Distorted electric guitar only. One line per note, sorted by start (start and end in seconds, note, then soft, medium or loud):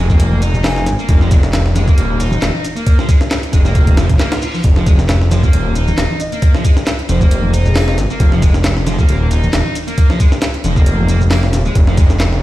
0.10 0.41 A#3 medium
0.42 0.85 D#4 loud
0.99 1.20 A#3 medium
1.21 1.30 F3 medium
1.31 1.42 G#3 medium
1.75 1.87 G#3 medium
1.88 2.19 A#3 medium
2.20 2.63 D#4 loud
2.76 2.97 A#3 medium
2.99 3.08 F3 medium
3.08 3.20 G#3 medium
3.53 3.65 G#3 medium
3.65 3.97 A#3 medium
3.98 4.09 F3 medium
4.20 4.31 A#3 medium
4.42 4.53 F4 medium
4.54 4.60 F3 medium
4.77 4.86 F3 medium
4.87 4.97 G#3 medium
5.31 5.42 F3 medium
5.43 5.74 A#3 medium
5.75 6.19 D#4 loud
6.32 6.53 A#3 medium
6.54 6.63 F3 medium
6.65 6.75 G#3 medium
7.09 7.20 F3 medium
7.21 7.52 A#3 medium
7.53 7.97 D#4 loud
8.10 8.31 A#3 medium
8.32 8.41 F3 medium
8.42 8.53 G#3 medium
8.87 8.98 F3 medium
8.99 9.30 A#3 medium
9.31 9.74 D#4 loud
9.88 10.09 A#3 medium
10.10 10.19 F3 medium
10.20 10.31 G#3 medium
10.65 10.75 F3 medium
10.77 11.08 A#3 medium
11.09 11.20 A#3 medium
11.31 11.42 A#3 medium
11.66 11.75 G#3 medium
11.88 11.97 F3 medium
11.98 12.09 G#3 medium